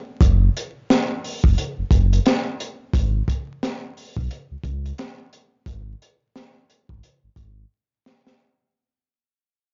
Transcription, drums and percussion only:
0.21 kick, closed hi-hat
0.57 closed hi-hat
0.90 snare, closed hi-hat
1.24 open hi-hat
1.44 kick
1.58 closed hi-hat
1.91 kick, closed hi-hat
2.13 closed hi-hat
2.26 snare, closed hi-hat
2.60 closed hi-hat
2.93 kick, closed hi-hat
3.28 kick, closed hi-hat
3.63 snare, closed hi-hat
3.97 open hi-hat
4.17 kick
4.31 closed hi-hat
4.63 kick, closed hi-hat
4.86 closed hi-hat
4.98 snare, closed hi-hat
5.33 closed hi-hat
5.66 kick, closed hi-hat
6.02 closed hi-hat
6.36 snare, closed hi-hat
6.70 closed hi-hat
6.89 kick
7.03 closed hi-hat
7.36 kick, closed hi-hat
8.06 snare
8.27 snare

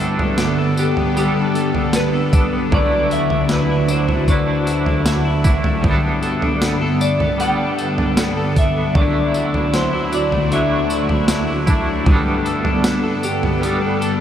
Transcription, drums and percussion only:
0.19 floor tom
0.38 snare, tambourine
0.77 tambourine
0.97 floor tom
1.17 tambourine
1.55 tambourine
1.75 floor tom
1.93 snare, tambourine
2.33 kick, floor tom, tambourine
2.72 kick, floor tom
3.11 tambourine
3.30 floor tom
3.49 snare, tambourine
3.88 tambourine
4.09 floor tom
4.28 kick, tambourine
4.67 tambourine
4.86 floor tom
5.06 snare, tambourine
5.44 kick, floor tom, tambourine
5.64 floor tom
5.84 kick, floor tom
6.23 tambourine
6.42 floor tom
6.62 snare, tambourine
7.01 tambourine
7.20 floor tom
7.40 tambourine
7.78 tambourine
7.98 floor tom
8.17 snare, tambourine
8.56 kick, floor tom, tambourine
8.95 kick, floor tom
9.34 tambourine
9.54 floor tom
9.74 snare, tambourine
10.12 tambourine
10.32 floor tom
10.52 tambourine
10.90 tambourine
11.09 floor tom
11.28 snare, tambourine
11.67 kick, floor tom, tambourine
12.06 kick, floor tom
12.46 tambourine
12.65 floor tom
12.84 snare, tambourine
13.23 tambourine
13.43 floor tom
13.63 tambourine
14.02 tambourine

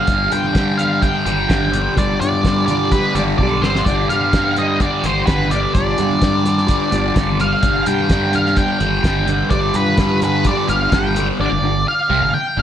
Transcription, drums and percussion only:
0.07 kick, closed hi-hat, low conga
0.32 closed hi-hat, low conga
0.44 high conga
0.55 kick, snare, closed hi-hat
0.79 closed hi-hat, high conga
1.02 kick, closed hi-hat
1.26 closed hi-hat, high conga
1.50 kick, snare, closed hi-hat
1.61 high conga
1.73 closed hi-hat, low conga
1.96 kick, closed hi-hat, low conga
2.21 closed hi-hat
2.32 high conga
2.45 kick, snare, closed hi-hat
2.68 closed hi-hat, high conga, low conga
2.92 kick, closed hi-hat
3.15 closed hi-hat, high conga
3.39 kick, high tom
3.51 high conga
3.62 snare, low conga
3.76 snare
3.86 kick, closed hi-hat, low conga
4.08 closed hi-hat, low conga
4.21 high conga
4.33 kick, snare, closed hi-hat
4.56 closed hi-hat, high conga
4.80 kick, closed hi-hat
5.03 closed hi-hat, high conga
5.27 kick, snare, closed hi-hat
5.39 high conga
5.51 closed hi-hat, low conga
5.75 kick, closed hi-hat, low conga
5.98 closed hi-hat, low conga
6.11 high conga
6.21 kick, snare, closed hi-hat
6.46 closed hi-hat, high conga
6.58 snare
6.68 kick, closed hi-hat
6.92 closed hi-hat, high conga
7.16 kick, snare, closed hi-hat
7.28 high conga
7.40 closed hi-hat, low conga
7.63 kick, closed hi-hat, low conga
7.86 closed hi-hat, low conga
8.00 high conga
8.10 kick, snare, closed hi-hat
8.33 closed hi-hat, high conga, low conga
8.46 snare
8.57 kick, closed hi-hat
8.80 closed hi-hat, high conga
9.04 kick, snare, closed hi-hat
9.16 high conga
9.28 closed hi-hat, low conga
9.50 kick, closed hi-hat, low conga
9.74 closed hi-hat, low conga
9.86 high conga
9.98 kick, snare, closed hi-hat
10.21 closed hi-hat, high conga, low conga
10.45 kick, closed hi-hat
10.68 closed hi-hat, high conga
10.92 kick, snare, closed hi-hat
11.04 high conga
11.15 closed hi-hat, low conga

